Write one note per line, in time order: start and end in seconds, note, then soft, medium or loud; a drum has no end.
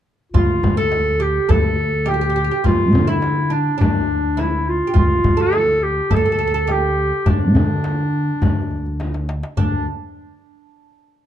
0.32 0.58 D2 medium
0.32 0.73 F4 medium
0.32 0.77 F4 medium
0.32 frame drum medium
0.32 darbuka dum medium
0.63 1.37 D2 medium
0.63 darbuka dum medium
0.63 frame drum medium
0.77 1.19 A4 medium
0.77 1.23 A4 medium
0.92 darbuka tek medium
0.92 frame drum medium
1.07 darbuka ka soft
1.20 1.48 G4 medium
1.20 1.53 G4 medium
1.49 2.48 D2 medium
1.49 2.05 A4 medium
1.49 2.10 A4 medium
1.49 darbuka dum medium
1.49 frame drum medium
1.65 darbuka ka soft
1.78 darbuka ka soft
2.06 2.13 G4 medium
2.06 2.65 G4 medium
2.06 darbuka tek medium
2.06 frame drum medium
2.14 2.20 G4 medium
2.21 2.28 G4 medium
2.30 2.35 G4 soft
2.36 2.43 G4 medium
2.44 2.50 G4 medium
2.51 2.59 G4 medium
2.64 2.94 D2 medium
2.64 3.07 F4 medium
2.64 3.10 F4 medium
2.64 darbuka dum medium
2.64 frame drum medium
2.93 3.68 D3 medium
2.93 darbuka dum medium
2.93 frame drum medium
3.07 3.52 E4 medium
3.07 3.54 E4 medium
3.22 darbuka tek medium
3.22 frame drum medium
3.36 darbuka ka soft
3.50 3.76 D4 medium
3.50 3.80 D4 medium
3.78 4.80 D2 medium
3.78 4.39 D4 medium
3.78 4.42 D4 medium
3.78 darbuka dum medium
3.78 frame drum medium
3.95 darbuka ka soft
4.09 darbuka ka soft
4.37 4.87 E4 medium
4.37 4.70 E4 medium
4.37 darbuka tek medium
4.37 frame drum medium
4.69 4.97 F4 medium
4.87 4.93 G4 medium
4.94 5.20 D2 medium
4.94 5.37 F4 medium
4.94 darbuka dum medium
4.94 frame drum medium
4.99 5.43 F4 medium
5.24 5.99 D2 medium
5.24 darbuka dum medium
5.24 frame drum medium
5.37 6.06 A4 medium
5.42 5.85 A4 medium
5.53 darbuka tek medium
5.53 frame drum medium
5.83 6.16 G4 medium
6.10 7.10 D2 medium
6.10 6.15 A4 medium
6.10 6.73 A4 medium
6.10 darbuka dum medium
6.10 frame drum medium
6.16 6.24 A4 medium
6.25 6.31 A4 medium
6.25 darbuka ka soft
6.32 6.37 A4 medium
6.39 6.46 A4 medium
6.39 darbuka ka soft
6.47 6.53 A4 medium
6.54 6.63 A4 medium
6.67 7.26 G4 medium
6.67 darbuka tek medium
6.67 frame drum medium
6.71 7.31 G4 medium
7.26 7.54 D2 medium
7.26 9.25 D4 medium
7.26 9.31 D4 medium
7.26 darbuka dum medium
7.26 frame drum medium
7.54 8.29 D3 medium
7.54 darbuka dum medium
7.54 frame drum medium
7.84 darbuka tek medium
7.84 frame drum medium
8.00 darbuka ka soft
8.13 darbuka ka soft
8.28 darbuka ka soft
8.41 9.41 D2 medium
8.41 darbuka dum medium
8.41 frame drum medium
8.57 darbuka ka soft
8.71 darbuka ka soft
8.86 darbuka ka soft
9.00 darbuka tek soft
9.00 frame drum medium
9.14 darbuka ka medium
9.29 darbuka tek medium
9.43 darbuka ka medium
9.57 9.86 D2 medium
9.57 9.85 D4 medium
9.57 9.87 D4 medium
9.57 darbuka dum medium
9.57 frame drum medium